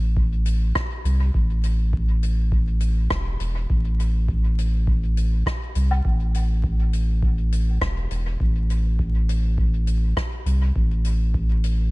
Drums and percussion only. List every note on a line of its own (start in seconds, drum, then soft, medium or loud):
0.17 kick loud
0.46 closed hi-hat medium
0.75 kick loud
0.75 cross-stick medium
1.05 closed hi-hat medium
1.34 kick loud
1.63 closed hi-hat medium
1.93 kick loud
2.23 closed hi-hat medium
2.52 kick loud
2.81 closed hi-hat medium
3.10 kick loud
3.10 cross-stick loud
3.40 closed hi-hat medium
3.70 kick loud
4.00 closed hi-hat medium
4.29 kick loud
4.59 closed hi-hat medium
4.87 kick loud
5.17 closed hi-hat medium
5.46 kick loud
5.46 cross-stick medium
5.75 closed hi-hat medium
5.91 low woodblock medium
6.05 kick loud
6.35 closed hi-hat medium
6.64 kick loud
6.93 closed hi-hat medium
7.22 kick loud
7.52 closed hi-hat medium
7.81 kick loud
7.81 cross-stick loud
8.11 closed hi-hat medium
8.40 kick loud
8.70 closed hi-hat medium
8.99 kick loud
9.29 closed hi-hat medium
9.58 kick loud
9.87 closed hi-hat medium
10.17 kick loud
10.17 cross-stick medium
10.46 closed hi-hat medium
10.76 kick loud
11.05 closed hi-hat medium
11.34 kick loud
11.64 closed hi-hat medium